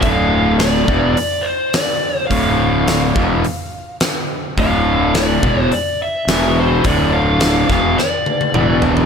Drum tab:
HH |o---o---o---o---|o---o---o---o---|o---o---o---o---|o---o-----------|
SD |----o-------o---|----o-------o---|----o-------o---|----o-o-o-------|
T1 |----------------|----------------|----------------|----------oo----|
T2 |----------------|----------------|----------------|------------o---|
FT |----------------|----------------|----------------|--------------oo|
BD |o-----o---------|o-----o---------|o-----o---------|o-----o---------|